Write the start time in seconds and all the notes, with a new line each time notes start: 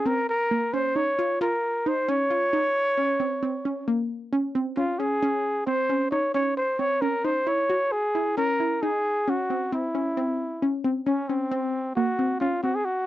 0.06 C4 A#4
0.29 A#4
0.51 A#3
0.74 C#4 C5
0.96 D#4 C#5
1.19 F4
1.41 F4 A#4
1.86 D#4 C5
2.09 C#4 C#5
2.31 F4
2.53 D#4
2.98 C#4
3.20 C4
3.43 C4
3.65 C#4
3.88 A#3
4.33 C#4
4.55 C4
4.77 C#4 F4
4.99 C#4 G#4
5.23 C#4
5.67 C4 C5
5.90 C#4
6.11 D#4 C#5
6.34 C#4 C#5
6.57 C5
6.79 C4 C#5
7.02 C#4 A#4
7.25 D#4 C5
7.47 E4 C#5
7.70 F#4
7.92 G#4
8.15 E4
8.37 C#4 A#4
8.60 E4
8.83 D#4 G#4
9.28 C#4 F#4
9.50 C4
9.72 C4 E4
9.95 C#4
10.17 C4
10.62 C#4
10.84 C4
11.07 C#4
11.29 C4 C#4
11.52 C4
11.96 A#3 F#4
12.19 C4
12.40 C#4 F4
12.63 C4 F#4
12.75 G#4
12.85 F#4